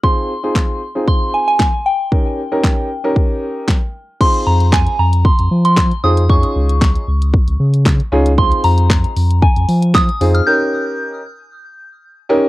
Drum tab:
CC |----------------|----------------|x---------------|----------------|
HH |----------------|----------------|-x-x-x-x-x-x-x-x|-x-x-x-x-x-x-x-x|
CP |----x-------x---|----x-------x---|----x-------x---|----x-------x---|
SD |----o-------o---|----o-------o---|----o-------o---|----o-------o---|
BD |o---o---o---o---|o---o---o---o---|o---o---o---o---|o---o---o---o---|

CC |----------------|----------------|
HH |-xox-xox-xox-xox|----------------|
CP |----x-------x---|----------------|
SD |----o-------o---|----------------|
BD |o---o---o---o---|----------------|